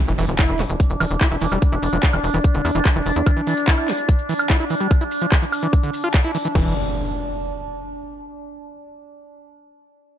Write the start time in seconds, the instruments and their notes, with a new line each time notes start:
Already playing: synth drone D4, impact
0.08 analog synth bass E1, acid bass E3, closed hi-hat, maracas
0.18 analog synth bass E1, acid bass E3, open hi-hat, maracas
0.28 analog synth bass F1, closed hi-hat, maracas
0.38 acid bass E4, kick, clap, closed hi-hat, high woodblock, maracas
0.49 analog synth bass E1, closed hi-hat, maracas
0.59 analog synth bass E1, acid bass E3, clap, open hi-hat, maracas
0.70 analog synth bass E1, closed hi-hat, maracas
0.80 kick, closed hi-hat, maracas
0.90 analog synth bass E1, closed hi-hat, maracas
1.00 analog synth bass E1, acid bass E3, open hi-hat, high woodblock, maracas
1.11 analog synth bass E1, closed hi-hat, maracas
1.21 acid bass E4, kick, clap, closed hi-hat, maracas
1.31 analog synth bass E1, acid bass E4, maracas
1.41 analog synth bass E1, acid bass E3, open hi-hat, maracas
1.52 analog synth bass E1, acid bass G3, closed hi-hat, high woodblock, maracas
1.62 kick, closed hi-hat, maracas
1.72 analog synth bass E1, acid bass E4, closed hi-hat, maracas
1.83 analog synth bass E1, open hi-hat, maracas
1.93 analog synth bass E1, acid bass F3, closed hi-hat, maracas
2.03 kick, clap, closed hi-hat, maracas
2.13 analog synth bass E1, acid bass E3, closed hi-hat, high woodblock, maracas
2.24 analog synth bass E1, open hi-hat, maracas
2.34 analog synth bass E1, acid bass E3, closed hi-hat, maracas
2.44 kick, closed hi-hat, maracas
2.54 analog synth bass E1, acid bass D3, closed hi-hat, maracas
2.65 analog synth bass E2, open hi-hat, high woodblock, maracas
2.75 analog synth bass E1, acid bass E3, closed hi-hat, maracas
2.85 kick, clap, closed hi-hat, maracas
2.96 analog synth bass E1, acid bass E3, maracas
3.06 analog synth bass E1, open hi-hat, maracas
3.16 analog synth bass E2, closed hi-hat, maracas
3.26 acid bass E3, kick, closed hi-hat, high woodblock, maracas
3.37 acid bass E3, closed hi-hat, maracas
3.47 acid bass E3, open hi-hat, maracas
3.57 closed hi-hat, maracas
3.67 acid bass E4, kick, clap, closed hi-hat, maracas
3.78 closed hi-hat, high woodblock, maracas
3.88 acid bass E3, clap, open hi-hat, maracas
3.98 closed hi-hat, maracas
4.09 kick, closed hi-hat, maracas
4.19 closed hi-hat, maracas
4.29 acid bass E3, open hi-hat, maracas
4.39 closed hi-hat, high woodblock, maracas
4.50 acid bass E4, kick, clap, closed hi-hat, maracas
4.60 acid bass E4, maracas
4.70 acid bass E3, open hi-hat, maracas
4.80 acid bass G3, closed hi-hat, maracas
4.91 kick, closed hi-hat, high woodblock, maracas
5.01 acid bass E4, closed hi-hat, maracas
5.11 open hi-hat, maracas
5.21 acid bass F3, closed hi-hat, maracas
5.31 kick, clap, closed hi-hat, maracas
5.42 acid bass E3, closed hi-hat, maracas
5.52 open hi-hat, high woodblock, maracas
5.63 acid bass E3, closed hi-hat, maracas
5.73 kick, closed hi-hat, maracas
5.83 acid bass D3, closed hi-hat, maracas
5.94 open hi-hat, maracas
6.04 acid bass F4, closed hi-hat, high woodblock, maracas
6.14 kick, clap, closed hi-hat, maracas
6.24 acid bass E4, maracas
6.35 acid bass E3, open hi-hat, maracas
6.45 acid bass E3, closed hi-hat, maracas
6.55 analog synth bass E1, acid bass E3, kick, crash, impact